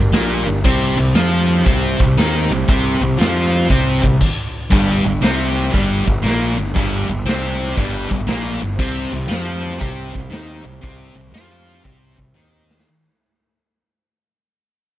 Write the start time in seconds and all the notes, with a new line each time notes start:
Already playing: G1 G2 D4 G4 A#4
0.12 A#1 A#2 A#3, snare, open hi-hat
0.46 G1 G2
0.63 C2 C3 C4 G4 C5, kick, crash
0.98 C2 C3
1.14 F2 F3 F4, snare, open hi-hat
1.58 snare
1.66 C2 C3 C4, kick, open hi-hat
2.00 C2 C3, kick
2.17 D#2 D#3 D#4, snare, open hi-hat
2.51 C2 C3
2.68 C2 C3 C4, kick, open hi-hat
3.01 C2 C3
3.18 F2 F3 F4, snare, open hi-hat
3.63 snare
3.70 C2 C3 C4, kick, open hi-hat
4.03 C2 C3, kick
4.21 kick, crash
4.70 G1 G2 G3, kick, open hi-hat
5.05 G1 G2
5.21 C2 C3 C4, snare, open hi-hat
5.71 G1 G2 G3, kick, open hi-hat
6.06 G1 G2, kick
6.23 A#1 A#2 A#3, snare, open hi-hat
6.58 G1 G2
6.75 G1 G2 G3, kick, open hi-hat
7.08 G1 G2
7.25 C2 C3 C4, snare, open hi-hat
7.71 snare
7.77 G1 G2 G3, kick, open hi-hat
8.11 G1 G2, kick
8.27 A#1 A#2 A#3, snare, open hi-hat
8.62 G1 G2
8.76 C2 C3 C4 G4 C5, kick, crash
9.13 C2 C3
9.28 F2 F3 F4, snare, open hi-hat
9.74 snare
9.80 C2 C3 C4, kick, open hi-hat
10.14 C2 C3, kick
10.31 D#2 D#3 D#4, snare, open hi-hat
10.63 C2 C3
10.81 C2 C3 C4, kick, open hi-hat
11.15 C2 C3
11.32 F2 F3 F4, snare, open hi-hat
11.83 C2 C3 C4, kick, open hi-hat
12.17 C2 C3, kick
12.34 D#2 D#3 D#4, snare
12.71 snare
12.80 snare